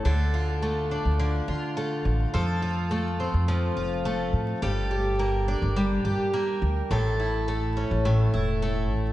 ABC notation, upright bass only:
X:1
M:4/4
L:1/16
Q:1/4=105
K:Dm
V:1 name="Upright bass" clef=bass
D,,6 z D,,2 z D,, z3 A,,, z | F,,6 z F,,2 z F,,,3 z A,, z | G,,,6 z G,,,2 z G,,, z3 D,, z | A,,,6 z A,,,2 z E,,,4 A,,, z |]